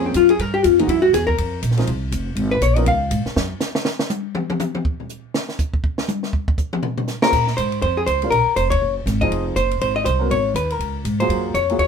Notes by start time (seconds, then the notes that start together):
Already playing: F2 F3 A#3 C4 C#4 G#4
0.06 C4
0.14 F#2 F4, hi-hat pedal, ride
0.29 G#4, ride
0.39 G2 A#4, ride
0.54 G4
0.64 F2 F4, hi-hat pedal, ride
0.79 E3 G#3 A#3 D#4 F#4, ride
0.88 F#2 E4, ride
1.02 F#4
1.13 E2 G#4, snare, hi-hat pedal, ride
1.27 A#4, kick
1.38 F2, ride
1.62 A#1, hi-hat pedal, ride
1.71 snare
1.77 F3 G#3 C4 D#4 G#4, snare, ride
1.87 C2, ride
2.12 F1, hi-hat pedal, ride
2.35 G#1, ride
2.51 B4
2.61 A#1 C#5, hi-hat pedal, ride
2.76 F3 B3 C#4 D#4 A#4 D#5, ride
2.86 C#2 F5, ride
3.11 G#2, hi-hat pedal, ride
3.26 muted upright bass stroke, snare
3.36 F#2, snare
3.60 snare, hi-hat pedal
3.75 snare
3.85 snare
3.99 snare
4.10 hi-hat pedal, high tom
4.35 mid tom
4.50 mid tom
4.60 hi-hat pedal, mid tom
4.75 mid tom
4.85 kick
5.00 floor tom
5.09 hi-hat pedal
5.34 snare
5.49 snare
5.59 kick, hi-hat pedal
5.74 kick
5.84 kick
5.98 snare
6.08 hi-hat pedal, high tom
6.23 snare
6.33 kick
6.48 kick
6.58 kick, hi-hat pedal
6.73 mid tom
6.83 floor tom
6.98 floor tom
7.08 snare, hi-hat pedal
7.22 A#3 C#4 F4 G#4 A#4 C5, snare
7.33 A#2, kick, crash
7.47 snare
7.57 G#2 C5, hi-hat pedal, ride
7.72 ride
7.82 F2 C5, ride
7.97 G#4
8.06 C#2 C5, hi-hat pedal, ride
8.22 G3 C#4 F4 A#4, ride
8.30 A#1 A#4, ride
8.46 muted upright bass stroke
8.56 F1 C5, hi-hat pedal, ride
8.70 C#5, kick, ride
8.82 F#1
9.06 G#1, snare, hi-hat pedal, ride
9.21 F3 C4 D#4 G#4 D#5, kick, ride
9.30 F1, ride
9.56 F#1 C5, hi-hat pedal, ride
9.71 ride
9.81 G#1 C5, ride
9.96 D#5
10.05 C2 C5, hi-hat pedal, ride
10.19 F#3 B3 C#4 A#4
10.30 G#1 C#5, ride
10.54 D#2 B4, hi-hat pedal, ride
10.70 A#4, ride
10.79 C#2, ride
11.05 G#2, hi-hat pedal, ride
11.20 F#3 A#3 F4 G#4 C5, ride
11.29 F#2, ride
11.54 F2 C#5, hi-hat pedal, ride
11.70 F#3 A#3 F4 G#4, ride
11.78 D#2 C#5, ride